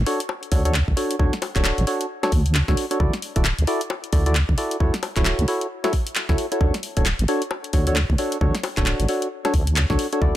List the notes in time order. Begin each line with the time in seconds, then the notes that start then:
0.06 D4 F#4 A4 C#5, open hi-hat
0.20 closed hi-hat
0.29 high bongo
0.43 closed hi-hat
0.52 D2 D4 F#4 A4 C#5, kick, open hi-hat
0.65 D4 F#4 A4 C#5, closed hi-hat
0.74 clap
0.88 D2, kick
0.97 D4 F#4 A4 C#5, open hi-hat
1.11 closed hi-hat
1.19 D2 D4 F#4 A4 C#5, kick
1.33 snare, closed hi-hat
1.42 open hi-hat, high bongo
1.56 D1 D4 F#4 A4 C#5, kick, clap, closed hi-hat
1.65 clap
1.78 A1, closed hi-hat
1.87 D4 F#4 A4 C#5, open hi-hat
2.01 closed hi-hat
2.23 D4 F#4 A4 C#5, snare, closed hi-hat, high bongo
2.32 D2, kick, open hi-hat
2.46 closed hi-hat
2.55 clap
2.68 D2 D4 F#4 A4 C#5, kick, snare
2.77 open hi-hat
2.91 D4 F#4 A4 C#5, closed hi-hat
3.00 D2 E4 F#4 A4 D5, kick
3.13 snare, closed hi-hat
3.22 open hi-hat
3.36 D1 E4 F#4 A4 D5, kick, closed hi-hat
3.45 clap
3.59 D2, closed hi-hat
3.67 E4 F#4 A4 D5, open hi-hat
3.81 closed hi-hat
3.90 high bongo
4.04 closed hi-hat
4.13 D2 E4 F#4 A4 D5, kick, open hi-hat
4.26 E4 F#4 A4 D5, closed hi-hat
4.35 clap
4.49 D2, kick
4.58 E4 F#4 A4 D5, open hi-hat
4.71 closed hi-hat
4.80 D2 E4 F#4 A4 C#5, kick
4.94 snare, closed hi-hat
5.03 open hi-hat, high bongo
5.16 D1 E4 F#4 A4 C#5, kick, clap, closed hi-hat
5.25 clap
5.39 D2, closed hi-hat
5.48 E4 F#4 A4 C#5, open hi-hat
5.61 closed hi-hat
5.84 E4 F#4 A4 C#5, snare, closed hi-hat, high bongo
5.93 kick, open hi-hat
6.07 closed hi-hat
6.15 clap
6.29 D2 E4 F#4 A4 C#5, kick, snare
6.38 open hi-hat
6.52 E4 F#4 A4 C#5, closed hi-hat
6.61 D2 D4 F#4 A4 C#5, kick
6.74 snare, closed hi-hat
6.83 open hi-hat
6.97 D1 D4 F#4 A4 C#5, kick, closed hi-hat
7.06 clap
7.19 A1, closed hi-hat
7.28 D4 F#4 A4 C#5, open hi-hat
7.42 closed hi-hat
7.51 high bongo
7.64 closed hi-hat
7.73 D2 D4 F#4 A4 C#5, kick, open hi-hat
7.87 D4 F#4 A4 C#5, closed hi-hat
7.96 clap
8.10 D2, kick
8.18 D4 F#4 A4 C#5, open hi-hat
8.32 closed hi-hat
8.41 D2 D4 F#4 A4 C#5, kick
8.55 snare, closed hi-hat
8.63 open hi-hat, high bongo
8.77 D1 D4 F#4 A4 C#5, kick, clap, closed hi-hat
8.86 clap
9.00 A1, closed hi-hat
9.09 D4 F#4 A4 C#5, open hi-hat
9.22 closed hi-hat
9.45 D4 F#4 A4 C#5, snare, closed hi-hat, high bongo
9.54 D2, kick, open hi-hat
9.67 closed hi-hat
9.76 clap
9.90 D2 D4 F#4 A4 C#5, kick, snare
9.99 open hi-hat
10.13 D4 F#4 A4 C#5, closed hi-hat
10.22 D2 E4 F#4 A4 D5, kick